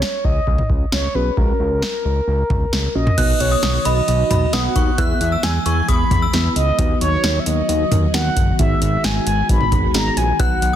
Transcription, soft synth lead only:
Already playing: C#5
0.24 D#5
0.92 C#5
1.15 B4
1.37 A#4
2.95 D#5
3.40 C#5
3.85 D#5
4.53 F#5
4.98 E5
5.21 E5
5.43 G#5
5.66 G#5
5.88 B5
6.56 D#5
7.01 C#5
7.39 E5
7.46 D#5
8.14 F#5
8.59 E5
8.82 E5
9.04 G#5
9.27 G#5
9.49 B5
9.95 A#5
10.17 G#5
10.40 F#5

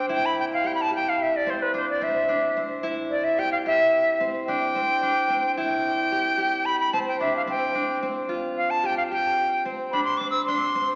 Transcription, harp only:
Already playing: C4 D4 G4
0.09 E4
0.64 G4
0.91 G4
1.46 C4
1.74 D4
2.01 C4
2.29 D4
2.57 C4
2.83 E4
3.38 G4
3.66 G4
4.20 C4
4.48 D4
4.75 C4
5.02 D4
5.30 C4
5.57 E4
6.12 G4
6.38 G4
6.93 C4
7.20 D4
7.47 C4
7.75 D4
8.03 C4
8.29 F4
8.83 G4
9.11 G4
9.65 C4
9.93 D4
10.20 C4
10.48 D4
10.75 C4

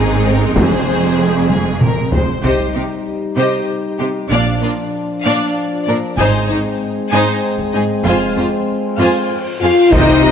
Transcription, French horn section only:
0.24 G#3 C4
1.18 G#3 C4
2.12 G#3 C4
2.42 G3 D#4
4.30 F3 D4
6.17 G#3 C4
9.60 F4
9.91 D#4

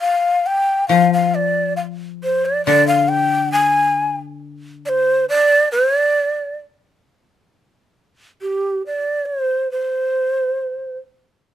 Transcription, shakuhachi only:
0.01 F5
0.46 G5
0.88 F5
1.13 F5
1.35 D5
1.76 F5
2.24 C5
2.45 D5
2.65 D5
2.88 F5
3.09 G5
3.52 G#5
4.86 C5 D5
5.29 D5
5.72 C5
5.97 D5
8.42 G4
8.86 D5
9.26 C5
9.71 C5

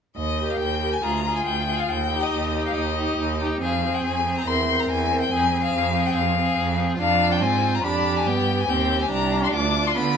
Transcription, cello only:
0.16 D#2
0.60 D#2
1.03 D2
1.47 D2
1.89 D#2
2.32 D#2
2.75 D#2
3.18 D#2
3.61 F2
4.04 F2
4.47 E2
4.89 E2
5.32 F2
5.73 F2
6.15 F2
6.58 F2
6.99 F2
7.41 G#2
7.84 F2
8.26 G2
8.69 D#2
9.11 C2
9.53 D2
9.95 D3

